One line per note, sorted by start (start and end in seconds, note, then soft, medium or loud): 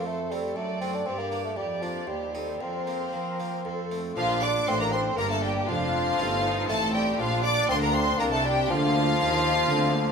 0.00 0.53 F2 soft
0.00 0.57 F2 medium
0.00 0.17 A3 soft
0.00 0.18 C4 soft
0.00 1.03 A4 soft
0.00 0.56 C5 soft
0.06 0.32 A3 medium
0.06 0.32 A4 medium
0.31 0.57 G3 medium
0.31 0.50 A3 soft
0.31 0.50 C4 soft
0.31 0.57 G4 medium
0.56 1.02 F#2 soft
0.56 1.07 F#2 medium
0.56 0.80 A3 medium
0.56 0.82 A4 medium
0.56 1.05 D5 soft
0.81 1.00 A3 soft
0.81 0.96 C4 medium
0.81 1.00 C4 soft
0.81 1.00 D4 soft
0.81 0.94 C5 medium
0.94 1.07 D4 medium
0.94 1.07 D5 medium
1.06 1.53 G2 soft
1.06 1.54 G2 medium
1.06 1.20 C4 medium
1.06 1.53 G4 soft
1.06 1.12 C5 medium
1.06 1.53 D5 soft
1.19 1.44 A#3 medium
1.19 1.27 A#4 medium
1.32 1.50 A#3 soft
1.32 1.50 D4 soft
1.45 1.58 A3 medium
1.45 1.57 A4 medium
1.57 2.03 F2 soft
1.57 2.07 F2 soft
1.57 1.83 G3 medium
1.57 2.06 G4 soft
1.57 1.65 G4 medium
1.57 2.07 D5 soft
1.82 2.09 F3 medium
1.82 2.01 A#3 soft
1.82 2.01 D4 soft
1.82 1.90 F4 soft
2.07 2.59 D#2 soft
2.07 2.56 D#2 soft
2.07 2.33 G3 medium
2.07 2.32 G4 medium
2.07 2.33 G4 soft
2.07 2.60 C5 soft
2.34 2.62 G3 medium
2.34 2.54 C4 soft
2.34 2.54 D#4 soft
2.34 2.60 G4 medium
2.34 2.61 A4 soft
2.60 3.12 F2 medium
2.60 3.09 F2 soft
2.60 3.91 C4 medium
2.60 3.65 A#4 soft
2.60 3.91 C5 medium
2.60 3.63 C5 soft
2.87 3.25 A#3 soft
2.87 3.25 C4 soft
3.13 3.61 F3 soft
3.13 3.64 F3 soft
3.40 3.58 A#3 soft
3.40 3.59 C4 soft
3.65 4.13 F2 soft
3.65 4.17 F2 medium
3.65 3.96 A4 soft
3.65 3.96 C5 soft
3.92 4.10 A3 soft
3.92 4.10 C4 soft
4.16 4.64 A#1 medium
4.16 4.64 A#2 medium
4.16 4.44 F3 medium
4.16 5.14 D4 medium
4.16 4.41 F4 medium
4.16 4.41 F5 loud
4.42 4.67 D4 medium
4.42 4.51 D5 medium
4.42 4.68 D6 loud
4.68 5.17 A1 medium
4.68 5.17 A2 medium
4.68 5.14 A2 medium
4.68 5.04 A#3 soft
4.68 4.74 C4 medium
4.68 5.04 D4 medium
4.68 4.80 C5 medium
4.68 4.81 C6 loud
4.81 4.93 A#3 medium
4.81 4.93 A#4 medium
4.81 4.93 A#5 medium
4.92 5.17 C4 medium
4.92 5.19 C5 medium
4.92 5.01 C6 medium
5.18 5.68 G1 medium
5.18 5.68 G2 medium
5.18 5.65 G2 medium
5.18 5.32 A#3 medium
5.18 5.68 A#3 medium
5.18 5.55 A#3 soft
5.18 5.55 D4 medium
5.18 5.31 A#4 medium
5.18 5.31 A#5 loud
5.30 5.44 A3 medium
5.30 5.43 A4 medium
5.30 5.44 A5 medium
5.43 5.70 G3 medium
5.43 5.68 G4 medium
5.43 5.52 G5 medium
5.68 6.18 F1 medium
5.68 6.18 F2 medium
5.68 6.15 F2 medium
5.68 6.69 F3 medium
5.68 6.19 D4 medium
5.68 6.69 F4 medium
5.68 6.67 F5 loud
6.18 6.68 G1 medium
6.18 6.68 G2 medium
6.18 6.65 G2 medium
6.18 6.55 A3 soft
6.18 6.44 C4 medium
6.18 6.55 D#4 soft
6.18 6.55 F4 medium
6.44 6.69 D#4 medium
6.68 7.18 A1 medium
6.68 7.18 A2 medium
6.68 7.16 A2 medium
6.68 6.80 A3 medium
6.68 7.06 A3 soft
6.68 7.19 C4 medium
6.68 7.06 D#4 medium
6.68 7.06 F4 medium
6.68 6.94 A4 medium
6.68 6.94 A5 loud
6.94 7.21 G3 medium
6.94 7.19 G4 medium
6.94 7.19 G5 medium
7.19 7.68 A#1 medium
7.19 7.66 A#2 medium
7.19 7.69 A#2 medium
7.19 7.45 F3 medium
7.19 8.70 D4 medium
7.19 7.44 F4 medium
7.19 7.44 F5 medium
7.43 7.68 D4 medium
7.43 7.70 D5 medium
7.43 7.69 D6 loud
7.69 8.19 D2 medium
7.69 8.19 D3 medium
7.69 8.16 D3 medium
7.69 8.06 A#3 soft
7.69 7.75 C4 medium
7.69 8.07 D4 soft
7.69 8.07 F4 medium
7.69 7.75 C5 medium
7.69 7.82 C6 loud
7.81 7.95 A#3 medium
7.81 7.88 A#4 medium
7.81 7.94 A#5 medium
7.94 8.20 C4 medium
7.94 8.19 C5 medium
7.94 8.20 C6 medium
8.18 8.69 C2 medium
8.18 8.69 C3 medium
8.18 8.66 C3 medium
8.18 8.31 A#3 medium
8.18 8.56 A#3 medium
8.18 8.56 D4 medium
8.18 8.57 F4 medium
8.18 8.25 A#4 medium
8.18 8.24 A#5 loud
8.32 8.44 A3 medium
8.32 8.44 A4 medium
8.32 8.45 A5 medium
8.44 8.70 G3 medium
8.44 8.69 G4 medium
8.44 8.70 G5 medium
8.70 9.19 D2 medium
8.70 9.19 D3 medium
8.70 9.16 D3 medium
8.70 10.12 F3 loud
8.70 9.19 A#3 medium
8.70 10.12 F4 medium
8.70 10.12 F5 loud
9.20 9.69 D#2 medium
9.20 9.68 D#3 medium
9.20 9.65 D#3 medium
9.20 9.68 A#3 medium
9.20 9.55 A#3 soft
9.20 9.56 F4 medium
9.69 10.12 D2 medium
9.69 10.12 D3 medium
9.69 10.06 A#3 medium
9.69 9.94 C4 medium
9.69 10.06 F4 medium
9.94 10.12 A#3 medium